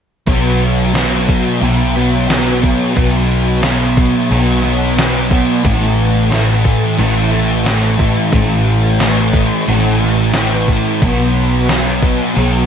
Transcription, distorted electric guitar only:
0.27 B2 F#3 B3
0.93 B2 F#3 B3
1.61 B2 F#3 B3
1.96 F#3 B3
2.28 B2 F#3 B3
2.61 F#3 B3
2.94 B2 F#3 B3
3.62 B2 F#3 B3
4.30 B2 F#3 B3
4.63 F#3 B3
4.96 B2 F#3 B3
5.31 F#3 B3
5.64 A2 E3 A3
6.31 A2 E3 A3
6.99 A2 E3 A3
7.32 E3 A3
7.64 A2 E3 A3
7.97 E3 A3
8.32 A2 E3 A3
8.99 A2 E3 A3
9.66 A2 E3 A3
10.00 E3 A3
10.35 A2 E3 A3
10.68 E3 A3
11.02 B2 F#3 B3
11.68 B2 F#3 B3
12.35 B2 F#3 B3

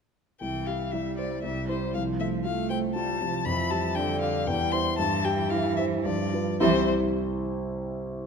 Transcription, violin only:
0.41 G5
0.67 F5
0.92 E5
1.17 D5
1.43 E5
1.69 C5
1.94 F5
2.20 E5
2.45 F5
2.70 G5
2.95 A5
3.45 B5
3.71 A5
3.95 G5
4.21 F5
4.47 G5
4.72 C6
4.98 A5
5.25 G5
5.51 F5
5.77 E5
6.04 D5
6.60 C5

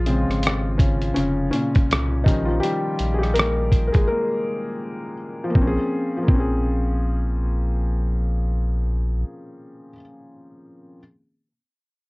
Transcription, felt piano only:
Already playing: F3 F4 G#4
0.06 C#3 G#3 C4
0.78 C#3 C#4
1.14 C#3 C#4
1.51 A#2 C#4
2.24 D#3 F3 G3 C#4 D#4
2.45 F3 F4
2.60 G3 G4
3.14 G#4
3.19 G3 G4
3.34 A#3 A#4
3.87 A#4
3.92 G#3 G#4
4.07 A#3 A#4
5.44 F3
5.50 A#3
5.56 C4
5.61 C#4
5.67 G#4
6.17 F3
6.23 A#3
6.28 C4
6.34 C#4
6.40 G#4

